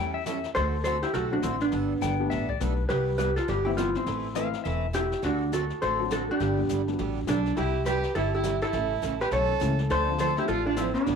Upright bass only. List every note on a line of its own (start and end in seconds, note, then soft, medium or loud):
0.00 0.44 E2 medium
0.56 1.03 D2 medium
1.13 1.39 B1 medium
1.43 1.68 A1 medium
1.73 1.96 G1 medium
2.02 2.27 G1 medium
2.32 2.57 A1 medium
2.61 2.86 B1 medium
2.90 3.37 C2 medium
3.49 3.95 G1 medium
4.07 4.53 A1 medium
4.66 5.12 E1 medium
5.23 5.70 D2 medium
5.82 6.29 A1 medium
6.40 6.64 G1 medium
6.70 6.95 G1 medium
6.99 7.24 A1 medium
7.28 7.53 B1 medium
7.57 8.04 C2 medium
8.16 8.62 G1 medium
8.73 8.97 A1 medium
9.03 9.28 A1 medium
9.31 9.56 B1 medium
9.61 9.86 C#2 medium
9.90 10.37 D2 medium
10.48 10.95 A1 medium
11.07 11.15 G1 medium